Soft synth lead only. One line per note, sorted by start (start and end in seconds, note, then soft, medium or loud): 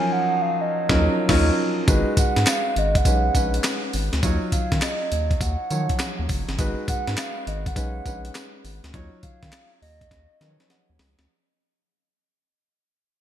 0.00 0.14 G#5 loud
0.12 0.43 F#5 loud
0.42 0.63 F5 loud
0.61 1.49 D#5 medium
2.19 2.50 F#5 loud
2.49 2.80 F5 loud
2.78 2.99 D#5 loud
2.97 3.95 F#5 loud
4.53 4.84 F5 loud
4.82 5.43 D#5 medium
5.41 6.29 F#5 loud
6.89 7.16 F#5 loud
7.18 7.49 F5 loud
7.48 7.66 D#5 loud
7.67 8.61 F#5 loud
9.23 9.78 F5 loud
9.82 10.96 D#5 loud